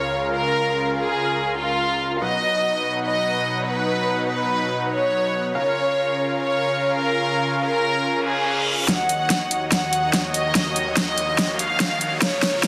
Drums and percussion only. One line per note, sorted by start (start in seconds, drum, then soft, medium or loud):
8.88 snare soft
8.88 closed hi-hat medium
9.09 closed hi-hat soft
9.30 snare soft
9.30 closed hi-hat medium
9.51 closed hi-hat medium
9.72 snare soft
9.72 closed hi-hat medium
9.93 closed hi-hat medium
10.13 snare medium
10.13 closed hi-hat medium
10.34 closed hi-hat medium
10.55 snare medium
10.55 closed hi-hat medium
10.76 closed hi-hat medium
10.97 snare medium
10.97 closed hi-hat medium
11.18 closed hi-hat medium
11.38 snare medium
11.38 closed hi-hat medium
11.59 closed hi-hat medium
11.80 snare medium
11.80 closed hi-hat medium
12.01 closed hi-hat medium
12.22 snare medium
12.22 closed hi-hat medium
12.43 snare medium
12.43 closed hi-hat medium
12.63 snare medium
12.63 closed hi-hat medium